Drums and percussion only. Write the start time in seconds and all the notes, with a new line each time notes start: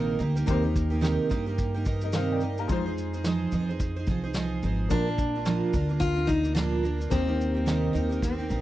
0.20 shaker
0.37 shaker
0.48 kick, shaker
0.76 kick, shaker
1.04 snare, shaker
1.31 kick, shaker
1.58 kick, shaker
1.85 kick, shaker
2.01 shaker
2.12 snare, shaker
2.41 shaker
2.58 shaker
2.69 kick, shaker
2.98 shaker
3.14 shaker
3.24 snare, shaker
3.52 shaker
3.80 kick, shaker
4.07 kick, shaker
4.34 snare, shaker
4.63 shaker
4.90 kick, shaker
5.18 kick, shaker
5.45 snare, shaker
5.73 kick, shaker
6.01 kick, shaker
6.28 kick, shaker
6.44 shaker
6.56 snare, shaker
6.85 shaker
7.01 shaker
7.11 kick, shaker
7.41 shaker
7.67 snare, shaker
7.95 shaker
8.12 shaker
8.22 kick, shaker
8.50 shaker